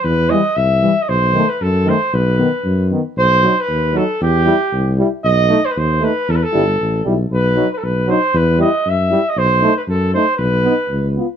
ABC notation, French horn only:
X:1
M:2/4
L:1/8
Q:1/4=116
K:none
V:1 name="French horn"
z G, z G, | z A, z A, | z B, z B, | z ^D z D |
z E z E | z ^D z D | z E z E | z ^D z D |
z E z E | z ^D z D | z ^D z ^E |]